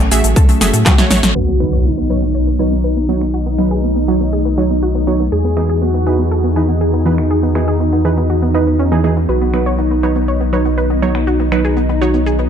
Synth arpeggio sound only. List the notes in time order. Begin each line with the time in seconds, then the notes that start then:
0.12 G#4
0.24 A3
0.36 A4
0.49 A3
0.61 G#4
0.73 A3
0.86 F#4
0.98 A3
1.11 A3
1.23 A3
1.35 B4
1.48 B3
1.60 B3
1.73 C#5
1.85 B3
1.97 B3
2.10 B4
2.22 B3
2.35 C#5
2.47 B3
2.59 B4
2.72 B3
2.84 B4
2.97 B3
3.09 B3
3.21 B3
3.34 F#4
3.46 B3
3.59 B3
3.71 G#4
3.83 B3
3.96 B3
4.08 F#4
4.21 B3
4.33 G#4
4.45 B3
4.58 F#4
4.70 B3
4.83 F#4
4.95 B3
5.07 B3
5.20 B3
5.32 G#4
5.45 B3
5.57 B3
5.69 G#4
5.82 B3
5.94 B3
6.07 G#4
6.19 B3
6.31 A4
6.44 B3
6.56 G#4
6.69 B3
6.81 G#4
6.93 B3
7.06 B3
7.18 B3
7.30 G#4
7.43 B3
7.55 B3
7.68 G#4
7.80 B3
7.93 B3
8.05 G#4
8.17 B3
8.30 F#4
8.42 B3
8.54 D#4
8.67 B3
8.79 C#4
8.92 B3
9.04 B3
9.17 B3
9.29 B4
9.41 B3
9.54 B3
9.66 C#5
9.78 B3
9.91 B3
10.03 B4
10.16 B3
10.28 C#5
10.41 B3
10.53 B4
10.65 B3
10.78 B4
10.90 B3
11.02 B3
11.15 B3
11.27 F#4
11.40 B3
11.52 B3
11.65 G#4
11.77 B3
11.89 B3
12.02 F#4
12.14 B3
12.26 G#4
12.39 B3